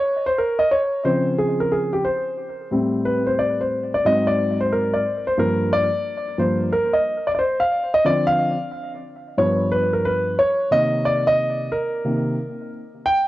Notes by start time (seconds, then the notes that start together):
Already playing: C#5
0.26 C5
0.38 A#4
0.59 D#5
0.71 C#5
1.04 C#3 F3 C4 C5
1.38 G#4
1.60 A#4
1.72 G#4
1.93 G4
2.05 C5
2.71 A2 G3 C4
3.05 B4
3.27 C5
3.39 D5
3.61 C5
3.94 D5
4.05 G#2 F#3 C4 D#5
4.27 D5
4.61 C5
4.72 A#4
4.94 D5
5.27 C5
5.38 G2 F3 A#3 A#4
5.73 D5
6.38 G2 F3 A#3 C5
6.73 A#4
6.93 D#5
7.27 D5
7.35 D5
7.39 C5
7.60 F5
7.94 D#5
8.05 D3 F3 C4 D5
8.27 F5
9.38 G2 F3 B3 C#5
9.72 B4
9.93 A#4
10.05 B4
10.39 C#5
10.71 C3 D#3 A#3 D#5
11.05 D5
11.27 D#5
11.72 A#4
12.05 C3 D#3 A#3
13.06 G5